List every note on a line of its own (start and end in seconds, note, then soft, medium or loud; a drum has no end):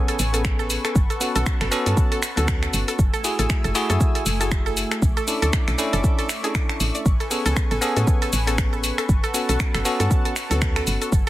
0.00 0.16 B3 loud
0.00 0.16 C#4 medium
0.00 0.17 G#4 medium
0.00 0.17 A4 loud
0.00 2.95 B4 medium
0.00 0.93 G#5 medium
0.00 2.95 C#6 medium
0.08 0.16 A4 loud
0.08 closed hi-hat medium
0.08 cabasa soft
0.19 0.78 A1 loud
0.19 open hi-hat loud
0.19 cabasa medium
0.33 0.94 B3 medium
0.33 0.94 C#4 medium
0.33 0.94 G#4 medium
0.33 0.39 A4 medium
0.33 0.95 A4 medium
0.33 closed hi-hat medium
0.33 cabasa soft
0.45 finger snap loud
0.45 kick loud
0.45 cabasa soft
0.59 0.64 A4 loud
0.59 cabasa soft
0.70 open hi-hat loud
0.70 cabasa medium
0.85 0.92 A4 loud
0.85 finger snap medium
0.85 closed hi-hat medium
0.85 cabasa soft
0.95 1.06 G1 loud
0.95 2.97 F#5 medium
0.95 2.97 A5 medium
0.95 kick loud
0.95 cabasa soft
1.10 1.15 A4 medium
1.10 closed hi-hat soft
1.10 cabasa soft
1.20 1.69 B3 medium
1.20 1.69 C#4 medium
1.20 1.69 F#4 medium
1.20 1.69 A4 medium
1.20 open hi-hat loud
1.20 cabasa medium
1.35 1.43 B1 loud
1.35 1.40 A4 loud
1.35 closed hi-hat medium
1.35 cabasa soft
1.46 finger snap loud
1.46 kick loud
1.46 cabasa soft
1.61 1.69 G1 loud
1.61 1.68 A4 loud
1.61 finger snap medium
1.61 closed hi-hat medium
1.61 cabasa soft
1.71 2.20 B3 loud
1.71 2.20 C#4 medium
1.71 2.20 F#4 medium
1.71 2.20 A4 loud
1.71 open hi-hat loud
1.71 cabasa medium
1.86 1.94 G2 loud
1.86 1.91 A4 medium
1.86 closed hi-hat medium
1.86 cabasa soft
1.97 kick loud
1.97 cabasa soft
2.12 2.17 A4 loud
2.12 closed hi-hat medium
2.12 cabasa soft
2.23 finger snap medium
2.23 open hi-hat loud
2.23 cabasa medium
2.36 2.68 D2 loud
2.36 2.97 B3 medium
2.36 2.97 C#4 medium
2.36 2.98 F#4 medium
2.36 2.44 A4 loud
2.36 2.98 A4 medium
2.36 closed hi-hat medium
2.36 cabasa soft
2.48 finger snap loud
2.48 kick loud
2.48 cabasa soft
2.63 2.67 A4 medium
2.63 finger snap medium
2.63 cabasa soft
2.73 2.84 G1 loud
2.73 open hi-hat loud
2.73 cabasa medium
2.88 2.93 A4 loud
2.88 closed hi-hat medium
2.88 cabasa soft
2.99 3.09 F#1 loud
2.99 7.02 A3 medium
2.99 5.00 G#5 medium
2.99 5.00 E6 medium
2.99 kick loud
2.99 cabasa soft
3.13 3.21 A4 loud
3.13 closed hi-hat soft
3.13 cabasa soft
3.24 3.72 A3 medium
3.24 3.72 E4 medium
3.24 3.73 F#4 medium
3.24 3.73 G#4 medium
3.24 open hi-hat loud
3.24 cabasa medium
3.39 3.46 A1 medium
3.39 3.44 A4 medium
3.39 closed hi-hat medium
3.39 cabasa soft
3.50 finger snap loud
3.50 kick loud
3.50 cabasa soft
3.64 3.72 F#1 loud
3.64 3.69 A4 loud
3.64 closed hi-hat medium
3.64 cabasa soft
3.75 4.23 A3 loud
3.75 4.23 E4 medium
3.75 4.23 F#4 medium
3.75 4.24 G#4 loud
3.75 open hi-hat loud
3.75 cabasa medium
3.90 3.97 F#2 loud
3.90 3.97 A4 loud
3.90 closed hi-hat medium
3.90 cabasa soft
4.01 kick loud
4.01 cabasa soft
4.15 4.20 A4 medium
4.15 closed hi-hat medium
4.15 cabasa soft
4.26 4.85 F#1 medium
4.26 open hi-hat loud
4.26 cabasa medium
4.40 5.00 A3 medium
4.40 5.01 E4 medium
4.40 5.01 F#4 medium
4.40 5.01 G#4 medium
4.40 4.45 A4 loud
4.40 closed hi-hat medium
4.40 cabasa soft
4.51 finger snap loud
4.51 kick loud
4.51 cabasa soft
4.66 4.73 A4 loud
4.66 cabasa soft
4.77 open hi-hat loud
4.77 cabasa medium
4.91 4.96 A4 medium
4.91 finger snap medium
4.91 closed hi-hat medium
4.91 cabasa soft
5.02 5.13 B1 loud
5.02 7.04 E5 medium
5.02 11.08 C#6 medium
5.02 7.04 D6 medium
5.02 kick loud
5.02 cabasa soft
5.17 5.22 A4 loud
5.17 closed hi-hat soft
5.17 cabasa soft
5.27 5.76 C#4 medium
5.27 5.76 D4 medium
5.27 5.76 E4 medium
5.27 5.76 A4 medium
5.27 open hi-hat loud
5.27 cabasa medium
5.42 5.50 D2 medium
5.42 5.50 A4 loud
5.42 closed hi-hat medium
5.42 cabasa soft
5.53 finger snap loud
5.53 kick loud
5.53 cabasa soft
5.68 5.75 B1 loud
5.68 5.73 A4 medium
5.68 finger snap medium
5.68 closed hi-hat medium
5.68 cabasa soft
5.78 6.27 C#4 loud
5.78 6.27 D4 medium
5.78 6.27 E4 medium
5.78 6.27 A4 loud
5.78 open hi-hat loud
5.78 cabasa medium
5.93 6.01 F#1 loud
5.93 5.98 A4 loud
5.93 closed hi-hat medium
5.93 cabasa soft
6.04 kick loud
6.04 cabasa soft
6.19 6.26 A4 loud
6.19 closed hi-hat medium
6.19 cabasa soft
6.29 finger snap medium
6.29 open hi-hat loud
6.29 cabasa medium
6.43 7.04 C#4 medium
6.43 7.04 D4 medium
6.43 7.04 E4 medium
6.43 6.47 G#4 loud
6.43 7.05 A4 medium
6.43 closed hi-hat medium
6.43 cabasa soft
6.55 finger snap loud
6.55 kick loud
6.55 cabasa soft
6.69 6.77 A5 medium
6.69 finger snap medium
6.69 cabasa soft
6.80 6.91 A1 medium
6.80 open hi-hat loud
6.80 cabasa medium
6.95 6.98 D5 medium
6.95 closed hi-hat medium
6.95 cabasa soft
7.06 7.16 A1 loud
7.06 11.08 B4 medium
7.06 9.07 G#5 medium
7.06 kick loud
7.06 cabasa soft
7.20 7.25 A4 medium
7.20 closed hi-hat soft
7.20 cabasa soft
7.31 7.79 B3 medium
7.31 7.79 C#4 medium
7.31 7.79 G#4 medium
7.31 7.80 A4 medium
7.31 open hi-hat loud
7.31 cabasa medium
7.46 7.53 C#2 medium
7.46 7.51 A4 loud
7.46 closed hi-hat medium
7.46 cabasa soft
7.56 finger snap loud
7.56 kick loud
7.56 cabasa soft
7.71 7.79 A1 loud
7.71 7.78 A4 loud
7.71 closed hi-hat medium
7.71 cabasa soft
7.81 8.30 B3 loud
7.81 8.30 C#4 medium
7.81 8.30 G#4 medium
7.81 8.30 A4 loud
7.81 open hi-hat loud
7.81 cabasa medium
7.97 8.04 A2 loud
7.97 8.01 A4 medium
7.97 closed hi-hat medium
7.97 cabasa soft
8.07 kick loud
8.07 cabasa soft
8.22 8.27 A4 loud
8.22 closed hi-hat medium
8.22 cabasa soft
8.33 8.91 A1 loud
8.33 open hi-hat loud
8.33 cabasa medium
8.46 9.07 B3 medium
8.46 9.08 C#4 medium
8.46 9.08 G#4 medium
8.46 8.55 A4 loud
8.46 9.08 A4 medium
8.46 closed hi-hat medium
8.46 cabasa soft
8.58 finger snap loud
8.58 kick loud
8.58 cabasa soft
8.73 8.78 A4 medium
8.73 cabasa soft
8.84 open hi-hat loud
8.84 cabasa medium
8.98 9.03 A4 loud
8.98 finger snap medium
8.98 closed hi-hat medium
8.98 cabasa soft
9.09 9.19 G1 loud
9.09 11.10 F#5 medium
9.09 11.10 A5 medium
9.09 kick loud
9.09 cabasa soft
9.24 9.31 A4 loud
9.24 closed hi-hat soft
9.24 cabasa soft
9.34 9.82 B3 medium
9.34 9.83 C#4 medium
9.34 9.83 F#4 medium
9.34 9.83 A4 medium
9.34 open hi-hat loud
9.34 cabasa medium
9.49 9.57 B1 loud
9.49 9.54 A4 medium
9.49 closed hi-hat medium
9.49 cabasa soft
9.60 finger snap loud
9.60 kick loud
9.60 cabasa soft
9.74 9.82 G1 loud
9.74 9.79 A4 loud
9.74 finger snap medium
9.74 closed hi-hat medium
9.74 cabasa soft
9.85 10.33 B3 loud
9.85 10.33 C#4 medium
9.85 10.34 F#4 medium
9.85 10.34 A4 loud
9.85 open hi-hat loud
9.85 cabasa medium
10.00 10.07 G2 loud
10.00 10.07 A4 loud
10.00 closed hi-hat medium
10.00 cabasa soft
10.11 kick loud
10.11 cabasa soft
10.25 10.30 A4 medium
10.25 closed hi-hat medium
10.25 cabasa soft
10.36 finger snap medium
10.36 open hi-hat loud
10.36 cabasa medium
10.50 10.82 D2 loud
10.50 11.11 B3 medium
10.50 11.11 C#4 medium
10.50 11.11 F#4 medium
10.50 10.56 A4 loud
10.50 11.12 A4 medium
10.50 closed hi-hat medium
10.50 cabasa soft
10.62 finger snap loud
10.62 kick loud
10.62 cabasa soft
10.76 10.83 A4 loud
10.76 finger snap medium
10.76 cabasa soft
10.87 10.97 G1 loud
10.87 open hi-hat loud
10.87 cabasa medium
11.02 11.06 A4 medium
11.02 closed hi-hat medium
11.02 cabasa soft
11.12 11.23 F#1 loud
11.12 11.29 A3 medium
11.12 11.29 G#5 medium
11.12 11.29 E6 medium
11.12 kick loud
11.12 cabasa soft